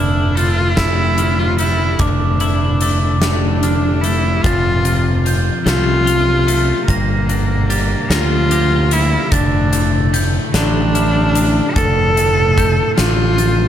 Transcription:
0.00 1.96 F1 medium
0.00 1.59 D2 medium
0.00 0.37 D4 medium
0.00 2.00 E4 medium
0.00 0.38 F6 medium
0.36 1.58 A3 medium
0.36 0.79 F4 medium
0.36 1.19 A6 medium
0.36 closed hi-hat soft
0.77 2.81 A2 medium
0.77 1.40 E4 medium
0.77 kick medium
0.77 snare loud
0.77 closed hi-hat medium
1.18 3.22 D3 medium
1.18 2.01 F6 medium
1.18 closed hi-hat medium
1.39 1.59 F4 medium
1.58 2.81 A3 medium
1.58 2.02 E4 medium
1.58 closed hi-hat soft
1.99 4.40 F1 medium
1.99 4.04 D2 medium
1.99 3.21 D4 medium
1.99 2.81 D6 medium
1.99 kick medium
1.99 closed hi-hat medium
2.40 4.45 E4 medium
2.40 closed hi-hat soft
2.81 4.03 A3 medium
2.81 3.64 D6 medium
2.81 closed hi-hat soft
3.22 4.44 A2 medium
3.22 4.02 D4 medium
3.22 snare medium
3.22 closed hi-hat medium
3.63 4.45 D3 medium
3.63 4.45 F6 medium
3.63 closed hi-hat medium
4.01 4.45 A3 medium
4.01 4.43 E4 medium
4.01 closed hi-hat medium
4.42 5.50 F1 medium
4.42 6.48 F2 medium
4.42 5.25 F4 medium
4.42 kick medium
4.42 closed hi-hat medium
4.46 5.27 A6 medium
4.85 6.88 C3 medium
4.85 closed hi-hat medium
5.25 6.91 F3 medium
5.25 6.08 G6 medium
5.25 closed hi-hat soft
5.65 6.72 C2 medium
5.65 6.46 A3 medium
5.65 6.84 F4 medium
5.65 snare loud
5.65 closed hi-hat medium
6.06 6.91 F4 medium
6.06 6.89 F6 medium
6.06 closed hi-hat medium
6.47 6.88 A3 medium
6.47 closed hi-hat medium
6.87 7.94 G1 medium
6.87 8.91 G2 medium
6.87 8.12 A#3 medium
6.87 7.70 A#6 medium
6.87 kick medium
6.87 closed hi-hat medium
7.29 9.32 D3 medium
7.29 closed hi-hat medium
7.70 9.32 G3 medium
7.70 8.51 A6 medium
7.70 closed hi-hat medium
8.10 9.15 D2 medium
8.10 8.91 A#3 medium
8.10 8.94 F4 medium
8.10 snare medium
8.10 closed hi-hat medium
8.51 9.33 G4 medium
8.51 9.33 A#6 medium
8.51 closed hi-hat medium
8.91 9.32 A#3 medium
8.91 9.35 E4 medium
8.91 closed hi-hat medium
9.32 10.37 F1 medium
9.32 11.35 D2 medium
9.32 10.14 D4 medium
9.32 10.14 A6 medium
9.32 kick loud
9.32 closed hi-hat loud
9.73 10.12 A2 medium
9.73 closed hi-hat medium
10.13 12.15 A2 medium
10.13 10.95 G6 medium
10.13 closed hi-hat medium
10.53 11.59 A1 medium
10.53 11.34 D3 medium
10.53 11.76 D4 loud
10.53 snare medium
10.53 closed hi-hat medium
10.95 12.98 E4 medium
10.95 11.76 F6 medium
10.95 closed hi-hat medium
11.35 12.97 D3 medium
11.35 closed hi-hat medium
11.74 12.81 F1 medium
11.74 13.68 D2 medium
11.74 12.96 A4 loud
11.74 12.57 A6 medium
11.74 kick loud
11.74 closed hi-hat medium
12.16 12.56 A2 medium
12.16 closed hi-hat medium
12.57 13.68 A2 medium
12.57 13.38 G6 medium
12.57 kick medium
12.57 closed hi-hat medium
12.97 13.68 A1 medium
12.97 13.68 D3 medium
12.97 13.68 F4 medium
12.97 snare medium
12.97 closed hi-hat medium
13.38 13.68 A6 medium
13.38 closed hi-hat medium

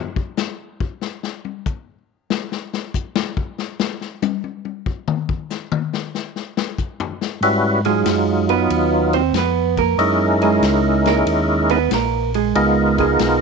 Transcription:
0.16 kick medium
0.37 snare medium
0.37 hi-hat pedal medium
0.80 kick medium
1.01 snare soft
1.23 snare soft
1.45 high tom soft
1.66 kick medium
1.66 hi-hat pedal medium
2.30 snare medium
2.52 snare soft
2.73 snare medium
2.94 kick medium
2.94 hi-hat pedal medium
3.16 snare loud
3.37 kick medium
3.58 snare soft
3.80 snare loud
4.01 snare soft
4.22 hi-hat pedal medium
4.22 high tom medium
4.44 high tom soft
4.65 high tom soft
4.86 kick medium
5.08 mid tom medium
5.29 kick medium
5.50 snare soft
5.50 hi-hat pedal medium
5.72 mid tom medium
5.93 snare medium
6.15 snare soft
6.36 snare soft
6.57 snare medium
6.78 kick medium
6.78 hi-hat pedal medium
7.00 floor tom medium
7.21 snare medium
7.41 8.04 G#2 medium
7.41 7.81 G3 medium
7.41 7.81 C#4 medium
7.41 7.81 E4 medium
7.41 7.81 F#4 medium
7.41 7.81 B4 medium
7.41 ride medium
7.85 9.22 F#3 medium
7.85 8.46 G#3 medium
7.85 9.22 D#4 medium
7.85 9.22 F4 medium
7.85 8.46 G#4 medium
7.85 ride soft
8.06 8.68 F#2 medium
8.06 snare medium
8.06 hi-hat pedal medium
8.06 ride medium
8.49 9.10 B3 medium
8.49 9.10 B4 medium
8.49 ride soft
8.69 9.32 D#2 medium
8.69 ride medium
9.13 9.35 C4 medium
9.13 9.34 C5 loud
9.13 ride soft
9.33 9.96 F2 medium
9.33 snare medium
9.33 hi-hat pedal medium
9.33 ride medium
9.37 9.78 B3 medium
9.37 9.78 B4 medium
9.77 10.38 A#3 medium
9.77 10.38 A#4 medium
9.77 kick medium
9.77 ride soft
9.97 10.60 F#2 medium
9.97 11.78 G#3 medium
9.97 11.78 C#4 medium
9.97 11.78 D#4 medium
9.97 11.79 E4 medium
9.97 11.79 A#4 medium
9.97 ride medium
10.42 11.03 G#3 medium
10.42 11.02 G#4 medium
10.42 ride soft
10.61 11.24 C#2 medium
10.61 snare medium
10.61 hi-hat pedal medium
10.61 ride medium
11.06 11.67 A#3 medium
11.06 11.67 A#4 medium
11.06 snare medium
11.06 ride soft
11.26 11.88 D#2 medium
11.26 ride medium
11.69 11.91 B3 medium
11.69 11.91 B4 loud
11.69 ride soft
11.90 12.53 A#1 medium
11.90 12.34 A#3 medium
11.90 12.34 A#4 medium
11.90 snare medium
11.90 hi-hat pedal soft
11.90 ride medium
12.34 12.95 G#3 medium
12.34 12.95 G#4 medium
12.34 ride medium
12.55 13.18 C#2 medium
12.55 13.41 G#3 medium
12.55 13.41 B3 medium
12.55 13.41 D#4 medium
12.55 13.41 F4 medium
12.55 13.41 A#4 medium
12.55 ride medium
12.98 13.41 G#3 medium
12.98 13.41 G#4 medium
12.98 kick soft
12.98 ride soft
13.19 13.41 B1 medium
13.19 snare medium
13.19 hi-hat pedal soft
13.19 ride medium

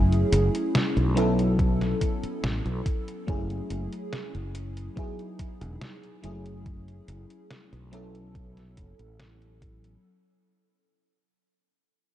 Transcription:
0.00 0.23 F#1 medium
0.00 1.08 F#3 medium
0.00 1.08 A3 medium
0.00 1.09 C#4 medium
0.00 1.09 E4 medium
0.00 1.09 G#4 medium
0.12 closed hi-hat soft
0.32 0.48 F#1 medium
0.32 closed hi-hat medium
0.55 closed hi-hat soft
0.75 snare loud
0.75 closed hi-hat soft
0.97 1.92 B1 medium
0.97 closed hi-hat soft
1.15 3.19 F#3 medium
1.15 3.19 B3 medium
1.15 3.20 C#4 medium
1.15 3.20 E4 medium
1.15 3.21 A4 loud
1.15 closed hi-hat medium
1.39 closed hi-hat soft
1.59 kick loud
1.59 closed hi-hat soft
1.81 snare soft
1.81 closed hi-hat soft
2.01 kick medium
2.01 closed hi-hat medium
2.23 muted fretless electric bass stroke soft
2.23 closed hi-hat soft
2.43 2.59 A1 medium
2.43 snare loud
2.43 closed hi-hat soft
2.66 2.80 B1 loud
2.66 closed hi-hat soft
2.86 kick loud
2.86 closed hi-hat medium
3.08 closed hi-hat soft
3.27 3.59 F#1 loud
3.27 4.88 F#3 medium
3.27 4.89 A3 medium
3.27 4.89 C#4 medium
3.27 4.89 E4 medium
3.27 4.90 G#4 medium
3.27 kick loud
3.27 closed hi-hat soft
3.50 closed hi-hat soft
3.70 3.86 F#1 medium
3.70 closed hi-hat medium
3.93 closed hi-hat soft
4.13 snare loud
4.13 closed hi-hat soft
4.35 4.88 F#1 medium
4.35 closed hi-hat soft
4.55 closed hi-hat medium
4.77 closed hi-hat soft
4.96 6.15 F#3 medium
4.96 6.15 B3 medium
4.96 6.16 D#4 medium
4.96 6.16 E4 medium
4.96 6.17 G#4 medium
4.96 kick loud
4.96 closed hi-hat soft
5.19 closed hi-hat soft
5.39 kick medium
5.39 closed hi-hat medium
5.61 5.76 E1 loud
5.61 closed hi-hat medium
5.81 snare loud
5.81 closed hi-hat medium
6.03 closed hi-hat soft
6.22 6.99 F#1 medium
6.22 7.84 F#3 medium
6.22 7.84 A3 medium
6.22 7.85 C#4 medium
6.22 7.85 E4 medium
6.22 7.85 G#4 medium
6.22 closed hi-hat medium
6.46 closed hi-hat medium
6.66 kick loud
6.66 closed hi-hat soft
6.88 closed hi-hat soft
7.08 7.24 F#1 medium
7.08 closed hi-hat medium
7.30 closed hi-hat medium
7.51 snare loud
7.51 closed hi-hat medium
7.73 8.79 B1 medium
7.73 closed hi-hat soft
7.91 9.95 F#3 medium
7.91 9.96 B3 medium
7.91 9.96 C#4 medium
7.91 9.96 E4 medium
7.91 9.97 A4 loud
7.91 closed hi-hat medium
8.15 closed hi-hat medium
8.35 kick loud
8.35 closed hi-hat medium
8.57 snare soft
8.57 closed hi-hat soft
8.77 8.93 F#1 medium
8.77 kick medium
8.77 closed hi-hat medium
8.99 9.95 A1 medium
8.99 closed hi-hat medium
9.20 snare loud
9.20 closed hi-hat medium
9.42 closed hi-hat soft
9.62 kick loud
9.62 closed hi-hat medium
9.84 closed hi-hat soft

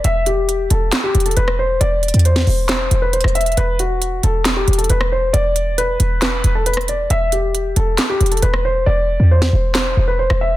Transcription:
0.04 0.68 E1 loud
0.04 0.24 E5 loud
0.04 closed hi-hat medium
0.26 0.68 G4 medium
0.26 closed hi-hat medium
0.49 closed hi-hat medium
0.70 0.92 E1 loud
0.70 1.02 A4 medium
0.70 closed hi-hat medium
0.92 snare loud
0.92 clap loud
0.92 closed hi-hat medium
1.04 1.23 G4 medium
1.15 1.36 E1 loud
1.15 closed hi-hat medium
1.20 closed hi-hat medium
1.26 1.36 A4 medium
1.26 closed hi-hat medium
1.31 closed hi-hat medium
1.37 1.79 E1 loud
1.37 1.56 B4 medium
1.37 closed hi-hat medium
1.48 cross-stick loud
1.59 1.79 C5 medium
1.81 2.13 E1 loud
1.81 2.22 D5 loud
1.81 closed hi-hat medium
2.03 closed hi-hat soft
2.08 closed hi-hat medium
2.14 2.46 E2 loud
2.14 closed hi-hat medium
2.19 closed hi-hat medium
2.25 2.67 C5 medium
2.25 closed hi-hat medium
2.36 snare medium
2.47 2.89 E1 loud
2.47 open hi-hat soft
2.69 3.00 C5 medium
2.69 snare loud
2.69 clap loud
2.69 closed hi-hat medium
2.91 3.23 E1 loud
2.91 closed hi-hat medium
3.02 3.12 B4 medium
3.13 3.33 C5 medium
3.13 closed hi-hat medium
3.21 3.56 E1 loud
3.21 cross-stick loud
3.21 closed hi-hat medium
3.28 closed hi-hat soft
3.35 3.55 E5 medium
3.35 closed hi-hat medium
3.41 closed hi-hat medium
3.46 closed hi-hat medium
3.52 closed hi-hat soft
3.57 4.21 E1 loud
3.57 3.77 B4 medium
3.57 closed hi-hat medium
3.79 4.21 F#4 medium
3.79 closed hi-hat medium
4.02 closed hi-hat medium
4.23 4.66 E1 loud
4.23 4.55 A4 medium
4.23 closed hi-hat medium
4.45 snare loud
4.45 clap medium
4.45 closed hi-hat medium
4.56 4.76 G4 medium
4.68 4.89 E1 loud
4.68 closed hi-hat medium
4.73 closed hi-hat medium
4.78 4.88 A4 medium
4.78 closed hi-hat medium
4.84 closed hi-hat medium
4.90 5.32 E1 loud
4.90 5.09 B4 medium
4.90 closed hi-hat medium
5.01 cross-stick loud
5.12 5.32 C5 medium
5.33 5.97 E1 loud
5.33 5.75 D5 loud
5.33 closed hi-hat medium
5.56 closed hi-hat medium
5.78 6.19 B4 medium
5.78 closed hi-hat medium
6.00 6.42 E1 loud
6.00 closed hi-hat medium
6.22 6.53 B4 loud
6.22 snare loud
6.22 clap medium
6.22 closed hi-hat medium
6.44 7.08 E1 loud
6.44 closed hi-hat medium
6.55 6.65 A4 medium
6.66 6.86 B4 medium
6.66 closed hi-hat medium
6.73 cross-stick loud
6.73 closed hi-hat medium
6.81 closed hi-hat soft
6.88 7.08 D5 medium
6.88 closed hi-hat medium
7.10 7.74 E1 loud
7.10 7.30 E5 loud
7.10 closed hi-hat medium
7.32 7.74 G4 medium
7.32 closed hi-hat medium
7.55 closed hi-hat medium
7.76 7.98 E1 loud
7.76 8.08 A4 medium
7.76 closed hi-hat medium
7.98 snare loud
7.98 clap medium
7.98 closed hi-hat medium
8.10 8.29 G4 medium
8.21 8.42 E1 loud
8.21 closed hi-hat medium
8.26 closed hi-hat medium
8.32 8.41 A4 medium
8.32 closed hi-hat medium
8.37 closed hi-hat medium
8.42 8.85 E1 loud
8.42 8.62 B4 medium
8.42 closed hi-hat medium
8.54 cross-stick medium
8.65 8.84 C5 medium
8.86 9.18 E1 loud
8.86 9.28 D5 loud
9.20 9.52 E2 loud
9.31 9.73 C5 medium
9.42 snare medium
9.53 9.95 E1 loud
9.75 10.06 C5 medium
9.75 snare loud
9.75 clap loud
9.97 10.29 E1 loud
10.08 10.18 B4 medium
10.19 10.39 C5 medium
10.30 10.57 E1 loud
10.30 cross-stick loud
10.41 10.57 E5 medium

